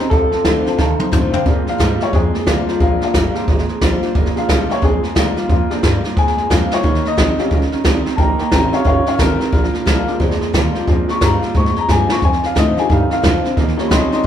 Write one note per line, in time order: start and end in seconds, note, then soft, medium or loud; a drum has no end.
0.00 0.12 C#4 soft
0.00 0.11 G4 medium
0.00 0.07 A#5 loud
0.10 0.31 C2 medium
0.10 0.30 F2 medium
0.10 0.76 F2 medium
0.10 0.30 C3 loud
0.10 1.08 A4 medium
0.10 0.24 C5 loud
0.10 0.24 F5 medium
0.10 0.24 A5 loud
0.10 kick loud
0.10 snare soft
0.31 0.43 F2 medium
0.31 0.43 C3 medium
0.31 0.39 C5 medium
0.31 0.40 F5 medium
0.31 0.40 A5 medium
0.31 muted upright bass stroke medium
0.31 snare soft
0.44 0.65 D2 loud
0.44 0.63 F2 medium
0.44 0.64 D3 medium
0.44 0.65 D#3 medium
0.44 0.65 A3 medium
0.44 0.66 C4 medium
0.44 0.64 F4 loud
0.44 0.57 C5 medium
0.44 0.58 F5 medium
0.44 0.58 C6 medium
0.44 kick medium
0.44 snare loud
0.44 hi-hat pedal medium
0.65 0.76 F2 medium
0.65 0.77 D3 medium
0.65 0.78 C4 soft
0.65 0.78 F4 medium
0.65 0.73 C5 medium
0.65 0.74 F5 medium
0.65 0.74 A5 loud
0.65 muted upright bass stroke medium
0.65 snare soft
0.77 0.99 D#2 medium
0.77 0.97 F2 medium
0.77 1.43 C3 medium
0.77 0.97 D#3 medium
0.77 0.91 C5 loud
0.77 0.91 F5 loud
0.77 0.92 A5 loud
0.77 kick loud
0.77 snare medium
0.98 1.10 F2 medium
0.98 1.11 D#3 medium
0.98 1.07 C5 medium
0.98 1.07 F5 medium
0.98 1.08 C6 loud
0.98 muted upright bass stroke medium
0.98 high tom medium
1.11 1.31 F2 medium
1.11 1.33 F2 loud
1.11 1.31 D3 medium
1.11 1.32 D#3 medium
1.11 1.33 A3 medium
1.11 1.33 C4 medium
1.11 1.32 F4 loud
1.11 1.24 C5 medium
1.11 1.25 F5 medium
1.11 1.25 C6 medium
1.11 kick medium
1.11 hi-hat pedal medium
1.11 mid tom medium
1.32 1.44 F2 medium
1.32 1.44 D3 medium
1.32 1.46 C4 medium
1.32 1.45 F4 medium
1.32 1.40 C5 medium
1.32 1.41 F5 medium
1.32 1.41 G5 medium
1.32 floor tom medium
1.45 1.64 A#2 medium
1.45 2.11 A#2 medium
1.45 1.66 A#2 medium
1.45 1.65 F3 medium
1.45 1.98 G#3 medium
1.45 1.98 C4 medium
1.45 1.98 D4 medium
1.45 kick loud
1.45 snare soft
1.66 1.78 A#2 medium
1.66 1.78 F3 medium
1.66 2.01 F5 loud
1.66 muted upright bass stroke medium
1.66 snare soft
1.78 2.00 G#2 loud
1.78 1.98 A#2 medium
1.78 2.11 F3 medium
1.78 1.98 G3 loud
1.78 2.12 G#3 medium
1.78 2.12 D4 medium
1.78 2.12 F4 medium
1.78 kick medium
1.78 snare loud
1.78 hi-hat pedal medium
2.00 2.11 A#2 medium
2.00 2.12 G3 medium
2.00 2.14 C#5 medium
2.00 muted upright bass stroke medium
2.00 snare soft
2.12 2.78 F2 medium
2.12 2.33 F2 medium
2.12 2.32 A#2 medium
2.12 2.32 G#3 medium
2.12 2.32 C4 soft
2.12 2.32 D4 medium
2.12 2.47 G#4 medium
2.12 kick loud
2.12 snare soft
2.34 2.45 A#2 medium
2.34 2.46 G#3 medium
2.34 muted upright bass stroke medium
2.34 snare soft
2.46 2.67 D2 loud
2.46 2.65 A#2 medium
2.46 2.79 F3 medium
2.46 2.66 G3 loud
2.46 2.79 G#3 medium
2.46 2.80 D4 medium
2.46 2.80 F4 loud
2.46 2.80 F4 medium
2.46 kick medium
2.46 snare loud
2.46 hi-hat pedal medium
2.67 2.78 A#2 medium
2.67 2.79 G3 medium
2.67 muted upright bass stroke medium
2.67 snare soft
2.80 3.01 A#1 medium
2.80 2.99 A#2 medium
2.80 3.45 A#2 medium
2.80 2.99 F3 medium
2.80 3.05 G#3 medium
2.80 3.05 C4 medium
2.80 3.02 D4 medium
2.80 3.02 F4 medium
2.80 kick loud
2.80 snare soft
3.01 3.12 A#2 medium
3.01 3.13 F3 medium
3.01 3.14 D4 medium
3.01 3.15 F4 medium
3.01 muted upright bass stroke medium
3.01 snare soft
3.14 3.34 G1 loud
3.14 3.33 A#2 medium
3.14 3.34 F3 medium
3.14 3.33 G3 medium
3.14 3.34 G#3 medium
3.14 3.35 D4 medium
3.14 3.35 F4 loud
3.14 kick medium
3.14 snare loud
3.14 hi-hat pedal medium
3.35 3.46 A#2 medium
3.35 3.46 G3 medium
3.35 3.46 G#3 soft
3.35 3.46 C4 soft
3.35 3.47 D4 medium
3.35 3.48 D4 soft
3.35 3.48 F4 medium
3.35 muted upright bass stroke medium
3.35 snare soft
3.47 3.68 G#1 medium
3.47 4.12 F2 medium
3.47 3.66 A#2 medium
3.47 3.66 G#3 medium
3.47 kick loud
3.47 snare soft
3.58 snare soft
3.69 3.80 A#2 medium
3.69 3.80 G#3 medium
3.69 muted upright bass stroke medium
3.69 snare soft
3.81 4.02 A#1 loud
3.81 4.00 A#2 medium
3.81 4.01 F3 medium
3.81 4.00 G3 loud
3.81 4.02 G#3 medium
3.81 4.02 D4 loud
3.81 4.01 F4 loud
3.81 kick medium
3.81 snare loud
3.81 hi-hat pedal medium
4.02 4.13 A#2 medium
4.02 4.14 G3 medium
4.02 4.15 D4 medium
4.02 4.14 F4 medium
4.02 muted upright bass stroke medium
4.02 snare soft
4.15 4.35 F1 medium
4.15 4.34 A#2 medium
4.15 4.80 A#2 loud
4.15 4.34 F3 loud
4.15 kick loud
4.15 snare soft
4.26 snare soft
4.35 4.47 A#2 medium
4.35 4.47 F3 medium
4.35 4.80 G#3 medium
4.35 4.80 C4 medium
4.35 4.81 D4 medium
4.35 4.70 F5 medium
4.35 muted upright bass stroke medium
4.35 snare soft
4.48 4.69 C2 loud
4.48 4.67 A#2 medium
4.48 4.69 F3 medium
4.48 4.68 G3 loud
4.48 4.69 G#3 medium
4.48 4.69 D4 loud
4.48 4.68 F4 medium
4.48 kick medium
4.48 snare loud
4.48 hi-hat pedal medium
4.69 4.81 A#2 medium
4.69 4.81 G3 medium
4.69 4.82 D4 soft
4.69 4.81 F4 medium
4.69 4.83 C#5 medium
4.69 muted upright bass stroke medium
4.69 snare soft
4.81 5.02 A#1 medium
4.81 5.47 F2 medium
4.81 5.01 A#2 medium
4.81 5.01 G#3 medium
4.81 5.01 C4 soft
4.81 5.01 D4 medium
4.81 5.16 G#4 medium
4.81 kick loud
4.81 snare soft
5.03 5.14 A#2 medium
5.03 5.15 G#3 medium
5.03 muted upright bass stroke medium
5.03 snare soft
5.15 5.36 D2 loud
5.15 5.34 A#2 medium
5.15 5.35 F3 medium
5.15 5.35 G3 medium
5.15 5.36 G#3 loud
5.15 5.36 D4 medium
5.15 5.36 F4 loud
5.15 5.49 F4 medium
5.15 kick medium
5.15 snare loud
5.15 hi-hat pedal medium
5.36 5.48 A#2 medium
5.36 5.48 G3 medium
5.36 5.50 D4 soft
5.36 5.49 F4 medium
5.36 muted upright bass stroke medium
5.36 snare soft
5.49 5.70 F2 medium
5.49 5.68 A#2 medium
5.49 6.14 A#2 medium
5.49 5.68 F3 medium
5.49 5.71 F4 medium
5.49 kick loud
5.49 snare soft
5.70 5.81 A#2 medium
5.70 5.82 F3 medium
5.70 5.90 G#3 medium
5.70 5.90 C4 soft
5.70 5.84 D4 medium
5.70 snare soft
5.82 6.03 G2 medium
5.82 6.01 A#2 medium
5.82 6.03 F3 medium
5.82 6.02 G3 medium
5.82 6.03 G#3 medium
5.82 6.03 D4 loud
5.82 6.03 F4 medium
5.82 kick medium
5.82 snare loud
5.82 hi-hat pedal medium
6.03 6.15 A#2 medium
6.03 6.15 G3 medium
6.03 6.17 D4 soft
6.03 6.16 F4 medium
6.03 muted upright bass stroke medium
6.03 snare soft
6.16 6.82 F2 medium
6.16 6.35 A#2 medium
6.16 6.35 G#3 medium
6.16 6.50 G#5 loud
6.16 kick loud
6.16 snare soft
6.28 snare soft
6.37 6.49 A#2 medium
6.37 6.49 G#3 medium
6.37 muted upright bass stroke soft
6.37 snare soft
6.50 6.71 F2 medium
6.50 6.69 A#2 medium
6.50 6.70 F3 medium
6.50 6.69 G3 medium
6.50 6.69 G#3 soft
6.50 6.70 G#3 medium
6.50 6.69 C4 soft
6.50 6.69 D4 medium
6.50 6.71 D4 loud
6.50 6.69 F4 loud
6.50 6.72 F5 medium
6.50 kick medium
6.50 snare loud
6.50 hi-hat pedal medium
6.71 6.82 A#2 medium
6.71 6.83 G3 medium
6.71 6.84 D4 soft
6.71 6.83 F4 medium
6.71 7.05 C#5 medium
6.71 muted upright bass stroke medium
6.71 snare medium
6.84 7.04 D#2 medium
6.84 7.16 D#3 medium
6.84 7.03 D#3 medium
6.84 7.03 A#3 medium
6.84 kick loud
6.84 snare soft
6.95 snare soft
7.05 7.16 D#3 medium
7.05 7.16 A#3 medium
7.05 8.04 D#5 loud
7.05 muted upright bass stroke medium
7.05 snare soft
7.17 7.38 A#1 loud
7.17 7.37 D#3 medium
7.17 7.36 D#3 medium
7.17 7.37 G3 medium
7.17 7.37 C4 medium
7.17 7.38 C#4 medium
7.17 7.37 G4 loud
7.17 kick medium
7.17 snare loud
7.17 hi-hat pedal medium
7.38 7.50 D#3 medium
7.38 7.58 G3 medium
7.38 7.50 C4 medium
7.38 7.58 C#4 soft
7.38 7.51 C#4 medium
7.38 7.59 F4 medium
7.38 7.50 G4 medium
7.38 muted upright bass stroke medium
7.38 snare soft
7.51 7.71 C#2 medium
7.51 8.16 A#2 medium
7.51 7.70 D#3 medium
7.51 7.70 C#4 medium
7.51 kick loud
7.51 snare soft
7.62 snare soft
7.72 7.83 D#3 medium
7.72 7.84 C#4 medium
7.72 muted upright bass stroke medium
7.72 snare soft
7.84 8.05 C2 loud
7.84 8.04 D#3 medium
7.84 8.03 D#3 medium
7.84 8.05 G3 medium
7.84 8.03 C4 loud
7.84 8.05 C#4 loud
7.84 8.04 G4 loud
7.84 kick medium
7.84 snare loud
7.84 hi-hat pedal medium
8.05 8.16 D#3 medium
8.05 8.17 C4 medium
8.05 8.18 C#4 medium
8.05 8.17 G4 medium
8.05 snare soft
8.15 8.39 A#1 medium
8.15 8.37 D#3 medium
8.15 8.50 D#3 medium
8.15 8.37 A#3 medium
8.15 8.38 G5 medium
8.15 8.18 A5 medium
8.15 kick loud
8.15 snare soft
8.20 8.39 A#5 loud
8.38 8.50 D#3 medium
8.38 8.50 A#3 medium
8.38 8.51 G5 medium
8.38 8.52 A#5 medium
8.38 muted upright bass stroke medium
8.38 snare soft
8.51 8.72 G#1 loud
8.51 8.70 D#3 medium
8.51 8.72 D#3 medium
8.51 8.72 G3 medium
8.51 8.70 C4 loud
8.51 8.72 C#4 loud
8.51 8.71 G4 medium
8.51 8.72 G5 medium
8.51 8.73 A#5 medium
8.51 kick medium
8.51 snare loud
8.51 hi-hat pedal medium
8.72 8.83 D#3 medium
8.72 9.16 G3 medium
8.72 8.84 C4 medium
8.72 9.17 C#4 medium
8.72 8.86 C#4 soft
8.72 9.17 F4 medium
8.72 8.85 G4 medium
8.72 8.85 C#5 medium
8.72 8.86 F5 medium
8.72 muted upright bass stroke medium
8.72 snare soft
8.84 9.06 G1 medium
8.84 9.50 A#2 medium
8.84 9.04 D#3 medium
8.84 9.04 C#4 medium
8.84 9.06 C#5 medium
8.84 9.07 F5 medium
8.84 kick loud
8.84 snare soft
9.06 9.17 D#3 medium
9.06 9.18 C#4 medium
9.06 9.19 C#5 medium
9.06 9.20 F5 loud
9.06 muted upright bass stroke medium
9.06 snare soft
9.18 9.40 G#1 loud
9.18 9.39 D#3 medium
9.18 9.38 D#3 medium
9.18 9.39 G3 medium
9.18 9.38 C4 loud
9.18 9.39 C#4 loud
9.18 9.38 G4 loud
9.18 10.18 A#4 loud
9.18 kick medium
9.18 snare loud
9.18 hi-hat pedal medium
9.39 9.51 D#3 medium
9.39 9.51 C4 medium
9.39 9.53 C#4 medium
9.39 9.52 G4 medium
9.39 muted upright bass stroke medium
9.39 snare soft
9.52 9.73 A#1 medium
9.52 9.71 A#2 medium
9.52 10.17 A#2 loud
9.52 9.72 F3 loud
9.52 kick loud
9.52 snare soft
9.64 snare soft
9.73 9.84 A#2 medium
9.73 9.85 F3 medium
9.73 muted upright bass stroke medium
9.73 snare soft
9.86 10.07 C2 loud
9.86 10.05 A#2 medium
9.86 10.06 F3 medium
9.86 10.05 G3 loud
9.86 10.07 G#3 medium
9.86 10.07 D4 loud
9.86 10.06 F4 medium
9.86 kick medium
9.86 snare loud
9.86 hi-hat pedal medium
10.07 10.18 A#2 medium
10.07 10.19 G3 medium
10.07 10.51 G#3 medium
10.07 10.52 C4 medium
10.07 10.52 D4 medium
10.07 10.20 D4 medium
10.07 10.20 F4 medium
10.07 muted upright bass stroke medium
10.07 snare soft
10.20 10.40 D2 medium
10.20 10.85 F2 medium
10.20 10.39 A#2 medium
10.20 10.39 G#3 medium
10.20 kick loud
10.20 snare soft
10.31 snare soft
10.41 10.52 A#2 medium
10.41 10.52 G#3 medium
10.41 muted upright bass stroke medium
10.41 snare soft
10.53 10.74 D#2 loud
10.53 10.72 A#2 medium
10.53 10.86 F3 medium
10.53 10.73 G3 medium
10.53 10.86 G#3 medium
10.53 10.86 D4 loud
10.53 10.87 F4 loud
10.53 kick loud
10.53 snare loud
10.53 hi-hat pedal medium
10.74 10.86 A#2 medium
10.74 10.86 G3 medium
10.74 muted upright bass stroke medium
10.74 snare soft
10.87 11.08 F2 medium
10.87 11.06 A#2 medium
10.87 11.52 A#2 medium
10.87 11.06 F3 loud
10.87 12.18 G#3 medium
10.87 12.18 C4 medium
10.87 12.19 D4 medium
10.87 kick loud
10.87 snare soft
11.08 11.20 A#2 medium
11.08 11.20 F3 medium
11.08 11.22 C#6 loud
11.08 muted upright bass stroke medium
11.08 snare soft
11.21 11.41 G2 loud
11.21 11.40 A#2 medium
11.21 11.41 F3 medium
11.21 11.40 G3 loud
11.21 11.41 G#3 medium
11.21 11.41 D4 medium
11.21 11.41 F4 loud
11.21 11.42 A#5 loud
11.21 kick medium
11.21 snare loud
11.21 hi-hat pedal medium
11.42 11.53 A#2 medium
11.42 11.54 G3 medium
11.42 11.55 D4 soft
11.42 11.54 F4 medium
11.42 muted upright bass stroke medium
11.42 snare soft
11.54 12.19 F2 medium
11.54 11.75 G#2 medium
11.54 11.73 A#2 medium
11.54 11.74 G#3 loud
11.54 11.76 C#6 medium
11.54 kick loud
11.54 snare soft
11.66 snare soft
11.75 11.87 A#2 medium
11.75 11.87 G#3 medium
11.75 11.89 A#5 loud
11.75 muted upright bass stroke medium
11.75 snare soft
11.88 12.09 G2 loud
11.88 12.07 A#2 medium
11.88 12.09 F3 medium
11.88 12.07 G3 medium
11.88 12.09 G#3 medium
11.88 12.09 D4 loud
11.88 12.09 F4 medium
11.88 12.10 G#5 loud
11.88 kick medium
11.88 snare medium
11.88 hi-hat pedal medium
12.09 12.20 A#2 medium
12.09 12.21 G3 medium
12.09 12.23 D4 soft
12.09 12.22 F4 medium
12.09 12.23 C#6 medium
12.09 muted upright bass stroke medium
12.09 snare loud
12.21 12.41 F2 medium
12.21 12.43 F2 medium
12.21 12.87 F2 medium
12.21 12.41 C3 medium
12.21 12.44 G#5 medium
12.21 kick loud
12.21 snare soft
12.33 snare soft
12.43 12.54 F2 medium
12.43 12.55 C3 medium
12.43 12.57 F5 medium
12.43 muted upright bass stroke medium
12.43 snare soft
12.55 12.74 F2 medium
12.55 12.76 A2 medium
12.55 12.75 D3 medium
12.55 12.76 D#3 medium
12.55 12.76 A3 medium
12.55 12.76 C4 medium
12.55 12.76 F4 loud
12.55 12.77 D#5 loud
12.55 kick medium
12.55 snare loud
12.55 hi-hat pedal medium
12.76 12.88 F2 medium
12.76 12.88 D3 medium
12.76 13.21 G3 medium
12.76 13.21 A3 medium
12.76 12.90 C4 soft
12.76 13.21 D#4 medium
12.76 12.89 F4 medium
12.76 12.90 G#5 loud
12.76 muted upright bass stroke medium
12.76 snare soft
12.89 13.08 F2 medium
12.89 13.09 G2 medium
12.89 13.54 C3 medium
12.89 13.08 D#3 medium
12.89 13.11 F5 loud
12.89 kick loud
12.89 snare soft
13.10 13.21 F2 medium
13.10 13.22 D#3 medium
13.10 13.77 F5 loud
13.10 muted upright bass stroke medium
13.10 snare soft
13.22 13.42 F2 medium
13.22 13.43 F2 loud
13.22 13.42 D3 medium
13.22 13.43 D#3 medium
13.22 13.43 A3 medium
13.22 13.43 C4 medium
13.22 13.43 F4 loud
13.22 kick medium
13.22 snare loud
13.22 hi-hat pedal medium
13.44 13.55 F2 medium
13.44 13.56 D3 medium
13.44 13.57 C4 medium
13.44 13.56 F4 medium
13.44 muted upright bass stroke medium
13.44 snare soft
13.56 13.77 D#2 medium
13.56 13.75 D#3 medium
13.56 13.88 D#3 medium
13.56 13.76 A#3 loud
13.56 kick loud
13.56 snare soft
13.68 snare soft
13.77 13.89 D#3 medium
13.77 14.27 F3 medium
13.77 14.27 G3 soft
13.77 13.89 A#3 medium
13.77 14.27 C#4 medium
13.77 muted upright bass stroke medium
13.77 snare soft
13.88 14.11 C2 loud
13.88 14.23 D#3 medium
13.88 14.09 D#3 medium
13.88 14.23 G3 loud
13.88 14.09 C4 loud
13.88 14.23 C#4 medium
13.88 14.23 G4 medium
13.88 14.11 D#5 medium
13.88 13.91 B5 medium
13.88 kick medium
13.88 snare loud
13.88 hi-hat pedal medium
13.93 14.12 C6 loud
14.11 14.23 D#3 medium
14.11 14.23 C4 medium
14.11 14.24 D#5 medium
14.11 14.24 C6 loud
14.11 muted upright bass stroke medium
14.11 snare soft
14.24 14.27 A#2 medium